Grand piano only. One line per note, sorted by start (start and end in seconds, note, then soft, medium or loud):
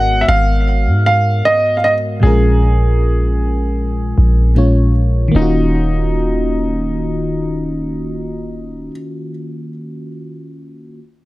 0.00 0.22 F#5 loud
0.21 0.28 E5 medium
0.28 1.05 F5 loud
1.06 1.42 F5 loud
1.45 1.75 D#5 loud
1.77 1.84 F5 medium
1.84 1.93 D#5 medium
2.23 4.52 G#4 medium
5.36 8.91 D#4 medium